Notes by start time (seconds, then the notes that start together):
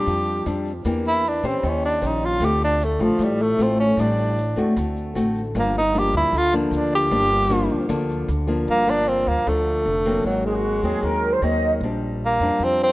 Already playing: G3 C4 D4 G4
0.07 F2 F3, shaker
0.26 shaker
0.46 F2 G3 C4 D4, shaker
0.66 shaker
0.85 E2 E3 A#3 D4 G4, shaker
1.05 E4, shaker
1.24 shaker
1.28 D4
1.43 A#2 C4 C#4 G4 C5, shaker
1.63 D#2 D#3, shaker
1.68 C#4
1.84 D4, shaker
2.01 A#1 C#4 G4 C5, shaker
2.07 D#4
2.22 F4, shaker
2.40 D2 D3 A3 C4 F4, shaker
2.45 G4
2.62 D4, shaker
2.81 A3, shaker
2.99 A1 F3 A3 C4 F4, shaker
3.19 A1 A2, shaker
3.23 G3
3.40 A3, shaker
3.58 A1 A3 C4 F4, shaker
3.62 C4
3.80 C#4, shaker
3.97 A1 A2 G3 C4 D4, shaker
4.19 shaker
4.38 shaker
4.56 D#2 A3 C4 F#4, shaker
4.76 D2 D3, shaker
4.96 shaker
5.15 A1 A3 C4 F#4, shaker
5.36 shaker
5.55 G1 G2 F3 A#3 D4, shaker
5.59 A#3
5.74 D#4, shaker
5.94 F3 A#3 D4, shaker
5.99 G4
6.13 D2 E4, shaker
6.32 D2 D3, shaker
6.37 F4
6.53 F3 A3 A#3 D4, shaker
6.71 D2, shaker
6.76 D4
6.92 G4, shaker
7.11 G1 G2 F3 A#3 D4, shaker
7.31 shaker
7.49 F3 A#3 D4, shaker
7.70 D2, shaker
7.89 D2 D3 F3 A#3 D4, shaker
8.09 shaker
8.28 D2, shaker
8.47 F3 A#3 D4, shaker
8.68 G1 G2 A#3
8.87 F3 A#3 D4
9.08 C4
9.27 D2 A#3
9.46 D2 D3 F3 A3 D4
9.86 F1
10.05 F#3 A#3 C4
10.25 G#1 G#2 F#3
10.44 G#3 G#4
10.54 F#4
10.83 D#2 F#3 A#3 C4 G#4
11.02 D#2 D#3 A#4
11.32 C5
11.42 D#2 F#3 A#3 C4 D#5
11.80 A#1 A#2 G3 C4 D4
12.26 A#3
12.40 F2 G3 C4 D4
12.59 F2 F3
12.64 C4
12.83 C4